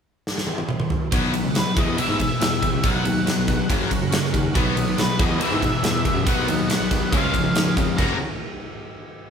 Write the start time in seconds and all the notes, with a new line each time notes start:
0.27 snare
0.38 snare
0.47 high tom
0.58 high tom
0.69 mid tom
0.80 mid tom
0.90 floor tom
1.11 B1 B2 F#3 B3 D#4 F#4 B4 F#5, kick, ride
1.34 B2 F#3, ride
1.44 C#2
1.55 B2 F#3 B4, snare, ride
1.77 E2 B2 E3 E4 G#4 B4 D#5 F#5, kick, ride
1.97 E2 B2 E3 E5, ride
2.08 G#2
2.19 E2 B2, kick, ride
2.40 E2 B2, snare, ride
2.54 snare
2.62 E2 B2, kick, ride
2.74 C#2
2.83 B1 B2 F#3 B3 D#4 F#4 B4 F#5, kick, ride
2.87 F#5
3.05 D#2 B2 F#3, ride
3.26 B2 F#3, snare, ride
3.38 B1
3.48 B2 F#3, kick, snare, ride
3.69 F#1 F#2 C#3 F#3 C#4 F#4 A#4 F#5, kick, ride
3.90 F#2 C#3, kick, ride
4.01 F#1
4.11 F#2 C#3, snare, ride
4.25 snare
4.33 D#2 F#2 C#3, kick, ride
4.54 B1 B2 F#3 B3 D#4 F#4 B4 F#5, kick, ride
4.76 B2 F#3 B3, ride
4.87 B1
4.97 B2 F#3 B3 B4, snare, ride
5.19 E2 B2 E3 E4 G#4 B4 D#5 F#5, kick, ride
5.39 E2 B2 E3 E5, ride
5.51 G#2
5.61 E2 B2 E3, kick, ride
5.83 E2 B2 E3 E5, snare, ride
6.05 E2 B2 E3, kick, ride
6.15 F#2
6.25 B1 B2 F#3 B3 D#4 F#4 B4 F#5, kick, ride
6.48 D#2 B2 F#3 B3, ride
6.68 B2 F#3 B3 F#5, snare, ride
6.80 B1
6.91 B2 F#3 B3, kick, snare, ride
7.11 C#2 C#3 F3 G#3 C#4 F4 G#4 F5, kick, ride
7.34 C#3 F3 G#3 C#4, kick, ride
7.44 C#2
7.55 D#2 C#3 F3 G#3 C#4, snare, ride
7.77 F2 C#3 F3 G#3 C#4, kick, ride
7.98 F#1 F#2 C#3 F#3 A#3 C#4 F#4 A#4 F#5 A#5, kick, crash